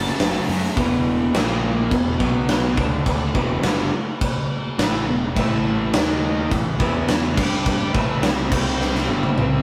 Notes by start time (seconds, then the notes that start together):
Already playing: F#2 C#3 F#3 A3 C#4 F#4 A4 C#5 A5
0.06 snare
0.18 F#1 F#2 C#3 F#3 A3 C#4 F#4, snare, open hi-hat
0.47 F#2 C#3 F#3 A3 C#4 F#4, open hi-hat
0.76 E1 E2 B2 E3, kick, crash
1.33 A#1 A#2 F3 A#3, snare, crash
1.91 E1 E2 B2, kick, crash
2.19 B1 B2 F#3 B3, kick
2.49 snare, crash
2.77 D2 D3 A3 D4, kick
3.06 kick, crash
3.34 E1 E2 B2 E3, kick
3.63 G1 G2 D3 G3, snare, crash
4.21 kick, crash
4.78 A1 A2 E3 A3, snare, crash
5.07 E1 E2 B2
5.35 A1 A2 E3 A3 E4 A4 E5, kick, crash
5.93 D#2 D#3 A#3 D#4 A#4 D#5, snare, crash
6.50 A1 A2 E3, kick, crash
6.78 E2 E3 B3 E4 B4 E5, kick
7.08 snare, crash
7.35 G2 G3 D4 G4 D5, kick, crash
7.66 kick, crash
7.93 A1 A2 E3 A3 E4 A4 E5, kick
8.21 C2 C3 G3 C4, snare, crash
8.51 C2 C3 G3 C4 G4 C5 G5, kick, crash
8.81 snare
8.95 snare
9.08 G1 G2 D3 G3 E4 A4 E5
9.23 high tom
9.37 C2 C3 G3 C4, mid tom